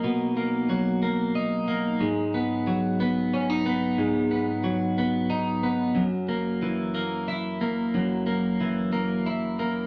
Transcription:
X:1
M:6/8
L:1/16
Q:3/8=61
K:G#m
V:1 name="Clean electric guitar"
[B,,F,A,D]2 A,2 F,2 A,2 D2 A,2 | G,,2 B,2 F,2 B,2 C D B,2 | G,,2 B,2 F,2 B,2 D2 B,2 | F,,2 A,2 E,2 A,2 E2 A,2 |
F,,2 A,2 E,2 A,2 E2 A,2 |]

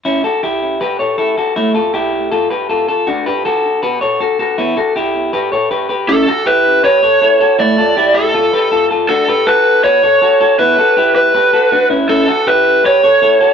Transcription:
X:1
M:4/4
L:1/8
Q:1/4=160
K:Amix
V:1 name="Lead electric guitar"
z8 | z8 | z8 | z8 |
A2 B2 c4 | d3 A4 z | A2 B2 c4 | B3 B4 z |
A2 B2 c4 |]
V:2 name="Clean electric guitar"
[CE] [FA] [EG]2 [GB] [Ac] [EA] [FA] | [A,E] [=FA] [EG]2 [FA] [GB] [FA] [FA] | [DF] [GB] [FA]2 [FB] [Ac] [FA] [FA] | [B,E] [FA] [EG]2 [GB] [Ac] [GB] [GB] |
[CE] [FA] [EG]2 [GB] [Ac] [EA] [FA] | [A,E] [=FA] [EG]2 [FA] [GB] [FA] [FA] | [DF] [GB] [FA]2 [FB] [Ac] [FA] [FA] | [B,E] [FA] [EG]2 [GB] [FA] [DF] [CE] |
[CE] [FA] [EG]2 [GB] [Ac] [EA] [FA] |]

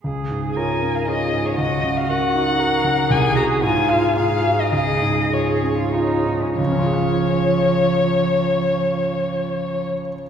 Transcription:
X:1
M:3/4
L:1/16
Q:1/4=103
K:Db
V:1 name="Violin"
z4 a3 f e3 d | e3 f g8 | a2 b2 a2 f2 f3 e | e4 d6 z2 |
d12- | d12 |]
V:2 name="Cello"
A4 B4 A4 | G8 B4 | A4 F4 A4 | A4 A3 F E3 D |
F,12- | F,12 |]
V:3 name="Grand piano"
D,,2 A,,2 [Fd]2 D2 [Fd]2 A,,2 | D,,2 D,2 [GB]2 E2 [GB]2 D,2 | C,,2 [GA]2 A,,2 [FA]2 A,,2 [GA]2 | D,,2 A,,2 [FA]2 D2 [FA]2 A,,2 |
[D,,D,DFAf]12- | [D,,D,DFAf]12 |]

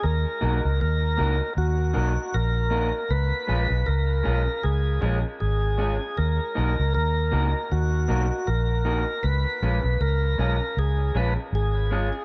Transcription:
X:1
M:4/4
L:1/16
Q:"Swing 16ths" 1/4=78
K:Ebm
V:1 name="Tonewheel organ"
B4 B4 G4 B4 | c4 B4 A2 A2 A4 | B4 B4 G4 B4 | c4 B4 A2 c2 A4 |]
V:2 name="Clean electric guitar"
z2 [B,EGB]2 z2 [B,EGB]2 z2 [B,EGB]2 z2 [B,EGB]2 | z2 [A,DFA]2 z2 [A,DFA]2 z2 [A,DFA]2 z2 [A,DFA]2 | z2 [B,EGB]2 z2 [B,EGB]2 z2 [B,EGB]2 z2 [B,EGB]2 | z2 [A,DFA]2 z2 [A,DFA]2 z2 [A,DFA]2 z2 [A,DFA]2 |]
V:3 name="Fingered electric bass" clef=bass
E,, z C,, D,, E,,2 D,, z E,,2 C,, z B,,,3 z | D,, z B,,, C,, D,,2 C,, z D,,2 B,,, z A,,,3 z | E,, z C,, D,, E,,2 D,, z E,,2 C,, z B,,,3 z | D,, z B,,, C,, D,,2 C,, z D,,2 B,,, z A,,,3 z |]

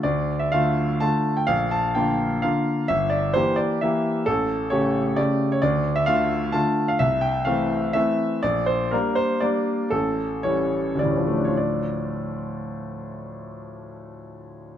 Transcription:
X:1
M:3/4
L:1/16
Q:1/4=125
K:Dm
V:1 name="Grand piano"
d3 e f4 a3 g | f2 a2 g4 f4 | e2 d2 c2 d2 e4 | A4 ^c4 d3 c |
d3 e f4 a3 f | e2 g2 f4 e4 | d2 c2 B2 c2 d4 | A4 ^c4 d3 c |
[D,,A,,F,A,DFd]12- | [D,,A,,F,A,DFd]12 |]
V:2 name="Grand piano"
D,,4 [D,A,F]4 [D,A,F]4 | B,,,4 [D,B,F]4 [D,B,F]4 | G,,,4 [E,B,G]4 [E,B,G]4 | A,,,4 [^C,A,G]4 [C,A,G]4 |
D,,4 [D,A,F]4 [D,A,F]4 | C,,4 [E,A,C]4 [E,A,C]4 | B,,,4 [G,B,D]4 [G,B,D]4 | A,,,4 [E,G,^C]4 [E,G,C]4 |
z12 | z12 |]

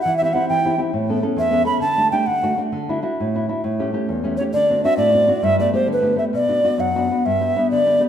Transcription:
X:1
M:6/8
L:1/16
Q:3/8=133
K:G
V:1 name="Ocarina"
f2 e e f2 g4 z2 | z6 e4 b2 | a4 g2 f4 z2 | z12 |
z8 z2 ^c2 | d4 e2 d6 | e2 d2 c2 B4 e2 | [K:Bm] d6 f6 |
e6 d4 z2 |]
V:2 name="Nylon-string guitar"
E,2 [CEG]2 [CEG]2 E,2 [CEG]2 [CEG]2 | A,,2 [B,^CA]2 [B,CA]2 E,,2 [B,CA]2 [B,CA]2 | D,2 [A,DG]2 [A,DG]2 D,2 [A,DF]2 [A,DF]2 | D,2 [DEF]2 [DEF]2 A,,2 [DEF]2 [DEF]2 |
A,,2 [A,^CG]2 [A,CG]2 E,,2 [A,CG]2 [A,CG]2 | D,2 [CDF]2 [CDF]2 A,,2 [CDF]2 [CDF]2 | G,,2 [A,B,G]2 [A,B,G]2 D,2 [A,B,G]2 [A,B,G]2 | [K:Bm] B,,2 [B,DF]2 [B,DF]2 F,,2 [B,DF]2 [B,DF]2 |
G,,2 [B,DG]2 [B,DG]2 D,2 [B,DG]2 [B,DG]2 |]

